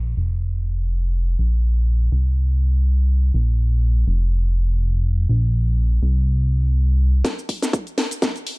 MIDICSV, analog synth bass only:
0, 0, Header, 1, 2, 480
1, 0, Start_track
1, 0, Tempo, 487805
1, 1370, Time_signature, 4, 2, 24, 8
1, 8447, End_track
2, 0, Start_track
2, 0, Title_t, "Analog synth bass"
2, 0, Program_c, 0, 38
2, 0, Note_on_c, 0, 34, 93
2, 148, Note_off_c, 0, 34, 0
2, 170, Note_on_c, 0, 29, 85
2, 1348, Note_off_c, 0, 29, 0
2, 1370, Note_on_c, 0, 34, 93
2, 2068, Note_off_c, 0, 34, 0
2, 2090, Note_on_c, 0, 36, 83
2, 3269, Note_off_c, 0, 36, 0
2, 3290, Note_on_c, 0, 34, 90
2, 3989, Note_off_c, 0, 34, 0
2, 4010, Note_on_c, 0, 29, 89
2, 5189, Note_off_c, 0, 29, 0
2, 5210, Note_on_c, 0, 34, 88
2, 5909, Note_off_c, 0, 34, 0
2, 5930, Note_on_c, 0, 36, 89
2, 7109, Note_off_c, 0, 36, 0
2, 8447, End_track
0, 0, End_of_file